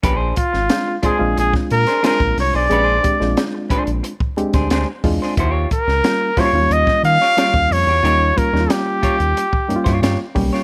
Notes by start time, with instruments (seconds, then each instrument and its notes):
0.03 analog synth bass A#1, clean electric guitar C#4 G4 B4, kick, closed hi-hat
0.16 clean electric guitar D4 G#4 C5
0.36 trumpet F4, kick, closed hi-hat
0.53 analog synth bass G#1, muted clean electric guitar stroke, snare
0.69 reed electric piano G#3 C4 D4 F4, snare, closed hi-hat
0.88 muted clean electric guitar stroke
1.02 analog synth bass A#1, reed electric piano G#3 C4 D4 F4, clean electric guitar D4 G#4 C5, trumpet G#4, kick, closed hi-hat
1.19 analog synth bass A#1, reed electric piano G#3 C4 D4 F4
1.37 analog synth bass A#1, trumpet G#4, muted clean electric guitar stroke, closed hi-hat
1.53 muted clean electric guitar stroke, kick, snare
1.70 analog synth bass A#2, trumpet A#4, closed hi-hat
1.87 clean electric guitar D4 G#4 C5, snare, closed hi-hat
2.03 reed electric piano G#3 C4 D4 F4, clean electric guitar D4 G#4 C5, trumpet A#4, snare, closed hi-hat
2.20 analog synth bass A#1, kick
2.37 analog synth bass C2, trumpet C#5, muted clean electric guitar stroke, snare, open hi-hat
2.54 analog synth bass B1, clean electric guitar D4 G#4 C5, trumpet D5
2.69 analog synth bass A#1, reed electric piano G#3 C4 D4 G#4, clean electric guitar C#4 G4 B4, closed hi-hat
2.84 clean electric guitar D4 G#4 C5
3.03 reed electric piano G#3 C4 D4 G4, kick, closed hi-hat
3.20 analog synth bass A#1, reed electric piano G#3 C4 D4 F4, muted clean electric guitar stroke, snare
3.37 snare, closed hi-hat
3.55 muted clean electric guitar stroke
3.70 analog synth bass A#1, clean electric guitar D4 G#4 C5, kick, closed hi-hat
3.86 analog synth bass A#1, muted clean electric guitar stroke, closed hi-hat
4.03 muted clean electric guitar stroke, closed hi-hat
4.20 muted clean electric guitar stroke, kick
4.37 analog synth bass D2, reed electric piano G#3 C4 D4 G4, closed hi-hat
4.53 analog synth bass D2, clean electric guitar D4 G#4 C5, kick, snare, closed hi-hat
4.70 analog synth bass D2, clean electric guitar D4 G#4 C5, snare, closed hi-hat
5.04 analog synth bass E2, reed electric piano G#3 C4 D4 F4, muted clean electric guitar stroke, kick, open hi-hat
5.22 clean electric guitar D4 G#4 C5, snare
5.37 analog synth bass D#2, clean electric guitar E4 F#4 C5, kick, closed hi-hat
5.51 clean electric guitar F4 G4 C#5
5.71 trumpet A#4, kick, closed hi-hat
5.87 analog synth bass C#2, muted clean electric guitar stroke, snare
6.04 reed electric piano G3 A#3 C#4 F4, snare, closed hi-hat
6.21 muted clean electric guitar stroke
6.37 analog synth bass D#2, reed electric piano G3 A#3 C#4 F4, clean electric guitar F4 G4 C#5, trumpet C#5, kick, snare, open hi-hat
6.53 analog synth bass D#2, reed electric piano F#3 A#3 C#4 F4, muted clean electric guitar stroke
6.61 reed electric piano G3
6.70 analog synth bass D#2, trumpet D#5, muted clean electric guitar stroke, closed hi-hat
6.87 muted clean electric guitar stroke, kick, snare
7.03 analog synth bass D#3, trumpet F5, closed hi-hat
7.22 clean electric guitar F4 G4 C#5, snare
7.37 reed electric piano G3 A#3 C#4 F4, clean electric guitar F4 G4 C#5, snare, closed hi-hat
7.54 analog synth bass D#2, kick
7.71 analog synth bass F2, trumpet C#5, muted clean electric guitar stroke, open hi-hat
7.87 analog synth bass E2, clean electric guitar F4 G4 C#5
8.03 analog synth bass D#2, reed electric piano G3 A#3 C#4 D#4, clean electric guitar F4 G4 C#5, closed hi-hat
8.36 reed electric piano G3 A#3 C#4 F4, trumpet A#4, kick, closed hi-hat
8.53 analog synth bass D#2, reed electric piano G3 A#3 C#4 D#4, muted clean electric guitar stroke, snare
8.60 reed electric piano F4
8.70 trumpet G4, snare, closed hi-hat
8.86 muted clean electric guitar stroke
9.02 analog synth bass D#2, clean electric guitar F4 G4 C#5, kick, closed hi-hat
9.20 analog synth bass D#2, closed hi-hat
9.37 muted clean electric guitar stroke, closed hi-hat
9.52 muted clean electric guitar stroke, kick
9.68 analog synth bass G2, reed electric piano G3 A#3 C#4 D#4, closed hi-hat
9.76 reed electric piano F4
9.84 analog synth bass G2, clean electric guitar F4 G4 C#5, kick, snare, closed hi-hat
10.02 analog synth bass G2, clean electric guitar F4 G4 C#5, snare, closed hi-hat
10.35 analog synth bass B1, reed electric piano G3 A#3 C#4 G4, muted clean electric guitar stroke, kick, open hi-hat
10.53 clean electric guitar F4 G4 C#5, snare